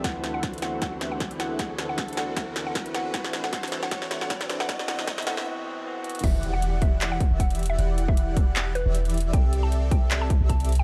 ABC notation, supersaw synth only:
X:1
M:4/4
L:1/16
Q:"Swing 16ths" 1/4=155
K:Em
V:1 name="Supersaw synth"
[Bc]8 [DABcef]8 | [DAcf]8 [DBcef]8 | [DABcef]4 [DABcef]4 [DABcef]4 [DABce]4 | z2 [DABcef]2 [Bc]2 [DABcef]2 z8 |
[E,EGdf]8- [E,EGdf]2 z [E,EGde]4- [E,EGde] | [E,EGdf]8- [E,EGdf]2 z [E,EGde]4- [E,EGde] | [CGAde]8- [CGAde]2 z [CGAde]4- [CGAde] |]